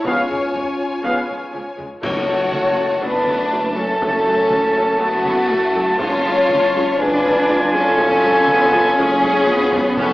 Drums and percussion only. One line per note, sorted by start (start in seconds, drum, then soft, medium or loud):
0.05 taiko medium
0.30 taiko low medium
0.55 taiko low medium
1.05 taiko medium
1.79 taiko low medium
2.03 concert bass drum medium
2.03 taiko medium
2.03 crash medium
2.53 taiko mid medium
3.27 taiko mid medium
4.02 taiko loud
4.51 taiko mid medium
5.25 taiko mid medium
5.99 taiko medium
6.49 taiko mid medium
7.24 taiko mid medium
7.98 taiko loud
8.48 taiko mid medium
9.23 taiko low-mid loud
9.47 taiko high medium
9.72 taiko low loud
9.97 taiko medium